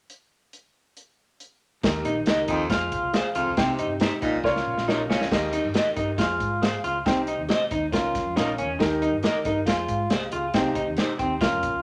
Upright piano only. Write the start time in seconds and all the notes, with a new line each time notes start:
1.83 D#3 D#4 G4 A#4
2.26 D#4 G4 A#4
2.70 F4 G#4 C5
3.13 F4 G#4 C5
3.57 C3 D#4 G4 C5
4.00 D#4 G4 C5
4.44 C#3 F4 A#4 C#5
4.88 G4 D#5
5.09 G#4 F5
5.31 D#3 G4 A#4 D#5
5.74 G4 A#4 D#5
5.96 G4 A#4 D#5
6.18 F4 G#4 C5
6.62 F4 G#4 C5
7.05 C3 D#4 G4 C5
7.49 G4 D#5
7.70 D#4 C5
7.92 C#3 C#4 F4 A#4
8.36 C#4 F4 A#4
8.79 D#3 D#4 G4 A#4
9.23 D#4 G4 A#4
9.45 D#4 G4 A#4
9.66 F4 G#4 C5
10.10 G4 D#5
10.32 G#4 F5
10.54 C3 D#4 G4 C5
10.98 D#4 G4 C5
11.20 D#4 G4 C5
11.41 C#3 C#4 F4 A#4